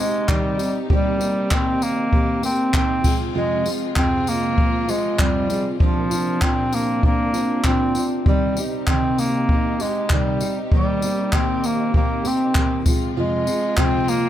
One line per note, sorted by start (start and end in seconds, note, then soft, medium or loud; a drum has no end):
0.00 14.29 C3 medium
0.00 0.31 G#3 medium
0.00 0.28 C4 soft
0.00 0.28 D#4 soft
0.00 3.01 D#4 medium
0.00 0.28 G4 medium
0.00 3.01 G4 medium
0.28 0.59 C3 medium
0.28 0.59 D#3 medium
0.28 0.78 G3 medium
0.28 0.58 C4 medium
0.28 0.58 D#4 medium
0.28 0.56 G4 medium
0.28 kick loud
0.28 clap loud
0.58 0.89 C4 soft
0.58 0.90 D#4 soft
0.58 0.89 G4 soft
0.58 tambourine medium
0.89 1.20 D#3 medium
0.89 1.55 G3 medium
0.89 1.20 A#3 medium
0.89 1.19 C4 medium
0.89 1.18 G4 medium
0.89 kick loud
1.19 1.49 A#3 soft
1.19 1.50 C4 medium
1.19 1.50 G4 medium
1.19 tambourine medium
1.50 2.10 D#3 medium
1.50 2.11 A#3 medium
1.50 2.12 C4 medium
1.50 1.84 C4 loud
1.50 2.12 G4 medium
1.50 kick loud
1.50 clap loud
1.82 2.44 A#3 loud
1.82 tambourine medium
2.11 2.43 D#3 medium
2.11 2.43 A#3 medium
2.11 2.42 C4 medium
2.11 2.41 G4 medium
2.11 kick loud
2.42 2.72 A#3 soft
2.42 2.73 C4 medium
2.42 2.73 C4 loud
2.42 2.73 G4 medium
2.42 tambourine medium
2.73 3.04 D#3 medium
2.73 3.04 A#3 medium
2.73 3.03 C4 medium
2.73 3.21 C4 loud
2.73 3.03 G4 medium
2.73 kick loud
2.73 clap medium
3.03 5.78 F3 medium
3.03 3.34 F3 soft
3.03 3.34 G#3 soft
3.03 3.34 C4 soft
3.03 3.35 F4 medium
3.03 5.78 F4 medium
3.03 kick loud
3.03 tambourine medium
3.03 crash medium
3.34 3.65 F2 medium
3.34 3.66 C3 medium
3.34 3.66 F3 medium
3.34 3.65 G#3 medium
3.34 3.69 G#3 medium
3.34 3.65 C4 medium
3.34 3.64 F4 medium
3.65 3.95 F3 soft
3.65 3.95 G#3 soft
3.65 3.95 C4 soft
3.65 3.96 F4 soft
3.65 tambourine medium
3.95 4.57 F2 medium
3.95 4.57 C3 medium
3.95 4.56 F3 medium
3.95 4.56 G#3 medium
3.95 4.57 C4 medium
3.95 4.30 C4 loud
3.95 4.58 F4 medium
3.95 kick loud
3.95 clap loud
4.27 4.91 A#3 loud
4.27 tambourine medium
4.56 4.88 F3 medium
4.56 4.88 G#3 medium
4.56 4.87 C4 medium
4.56 4.86 F4 medium
4.56 kick loud
4.87 5.17 F3 soft
4.87 5.19 G#3 soft
4.87 5.22 G#3 medium
4.87 5.18 C4 medium
4.87 5.18 F4 medium
4.87 tambourine medium
5.18 5.49 F2 medium
5.18 5.49 C3 medium
5.18 5.49 F3 medium
5.18 5.69 G3 medium
5.18 5.48 C4 medium
5.18 5.48 F4 medium
5.18 kick loud
5.18 clap loud
5.49 5.79 F3 soft
5.49 5.79 G#3 soft
5.49 5.79 C4 soft
5.49 5.79 F4 medium
5.49 tambourine medium
5.79 6.11 A#2 medium
5.79 6.11 F3 medium
5.79 6.45 F3 medium
5.79 8.23 A#3 medium
5.79 6.11 C4 medium
5.79 8.23 D4 medium
5.79 6.10 D4 medium
5.79 6.09 F4 medium
5.79 kick loud
6.10 6.41 C4 soft
6.10 6.41 D4 soft
6.10 6.41 F4 medium
6.10 tambourine medium
6.41 7.03 A#2 medium
6.41 7.01 F3 medium
6.41 7.03 C4 medium
6.41 6.76 C4 loud
6.41 7.03 D4 medium
6.41 7.03 F4 medium
6.41 kick loud
6.41 clap loud
6.73 7.04 A#3 medium
6.73 tambourine medium
7.03 7.34 F3 medium
7.03 7.62 A#3 loud
7.03 7.34 C4 medium
7.03 7.33 D4 medium
7.03 7.32 F4 medium
7.03 kick loud
7.34 7.64 C4 soft
7.34 7.64 D4 soft
7.34 7.64 F4 medium
7.34 tambourine medium
7.64 7.95 A#2 medium
7.64 7.95 F3 medium
7.64 7.96 C4 medium
7.64 8.11 C4 medium
7.64 7.95 D4 medium
7.64 7.94 F4 medium
7.64 kick loud
7.64 clap medium
7.95 8.26 C4 soft
7.95 8.26 D4 soft
7.95 8.26 F4 medium
7.95 tambourine medium
8.24 8.57 C3 medium
8.24 8.57 D#3 medium
8.24 8.59 G3 medium
8.24 8.57 C4 medium
8.24 12.81 D#4 medium
8.24 8.56 D#4 medium
8.24 12.81 G4 medium
8.24 8.56 G4 medium
8.24 kick loud
8.57 8.87 C4 soft
8.57 8.88 D#4 medium
8.57 8.87 G4 medium
8.57 tambourine medium
8.87 9.49 C3 medium
8.87 9.49 D#3 medium
8.87 9.50 C4 medium
8.87 9.21 C4 loud
8.87 9.51 D#4 medium
8.87 9.51 G4 medium
8.87 kick loud
8.87 clap loud
9.18 9.83 A#3 loud
9.18 tambourine medium
9.49 9.80 D#3 medium
9.49 9.80 C4 medium
9.49 9.81 D#4 medium
9.49 9.79 G4 medium
9.49 kick loud
9.80 10.11 G#3 medium
9.80 10.11 C4 soft
9.80 10.11 D#4 medium
9.80 10.11 G4 medium
9.80 tambourine medium
10.10 10.41 C3 medium
10.10 10.41 D#3 medium
10.10 10.57 G3 medium
10.10 10.42 C4 medium
10.10 10.42 D#4 medium
10.10 10.41 G4 medium
10.10 kick loud
10.10 clap loud
10.41 10.72 C4 soft
10.41 10.73 D#4 soft
10.41 10.72 G4 medium
10.41 tambourine medium
10.72 11.03 D#3 medium
10.72 11.36 G3 medium
10.72 11.03 A#3 medium
10.72 11.02 C4 medium
10.72 11.01 G4 medium
10.72 kick loud
11.02 11.32 A#3 soft
11.02 11.33 C4 soft
11.02 11.33 G4 medium
11.02 tambourine medium
11.33 11.92 D#3 medium
11.33 11.93 A#3 medium
11.33 11.94 C4 medium
11.33 11.68 C4 loud
11.33 11.94 G4 medium
11.33 kick loud
11.33 clap loud
11.64 11.95 A#3 medium
11.64 tambourine medium
11.93 12.24 D#3 medium
11.93 12.25 A#3 medium
11.93 12.29 A#3 medium
11.93 12.24 C4 medium
11.93 12.23 G4 medium
11.93 kick loud
12.24 12.54 A#3 soft
12.24 12.55 C4 medium
12.24 12.87 C4 medium
12.24 12.55 G4 medium
12.24 tambourine medium
12.55 12.86 D#3 medium
12.55 12.86 A#3 medium
12.55 12.85 C4 medium
12.55 12.86 G4 medium
12.55 kick loud
12.55 clap loud
12.85 14.29 F3 medium
12.85 13.16 F3 soft
12.85 13.15 G#3 soft
12.85 13.16 C4 medium
12.85 14.29 F4 medium
12.85 13.16 F4 medium
12.85 kick loud
12.85 tambourine medium
13.16 13.47 F2 medium
13.16 13.47 C3 medium
13.16 13.47 F3 medium
13.16 13.46 G#3 medium
13.16 13.81 G#3 medium
13.16 13.46 C4 medium
13.16 13.45 F4 medium
13.46 13.76 F3 soft
13.46 13.76 G#3 medium
13.46 13.76 C4 medium
13.46 13.77 F4 medium
13.46 tambourine medium
13.77 14.29 F2 medium
13.77 14.29 C3 medium
13.77 14.29 F3 medium
13.77 14.29 G#3 medium
13.77 14.29 C4 medium
13.77 14.11 C4 loud
13.77 14.29 F4 medium
13.77 kick loud
13.77 clap loud
14.08 14.29 A#3 loud
14.08 tambourine medium